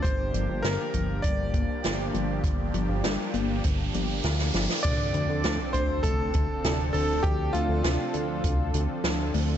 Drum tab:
CC |----------------|----------------|x---------------|----------------|
HH |x-x-x-x-x-x-x-x-|x-x-x-x-x-x-x-x-|x-x-x-x-x-x-x-o-|x-x-x-x-x-x-x-o-|
SD |----o-------o---|----o-------oooo|----o-------o---|----o-------o---|
BD |o-----o-o-o-----|o-------o-------|o-----o-o-o-----|o-------o-------|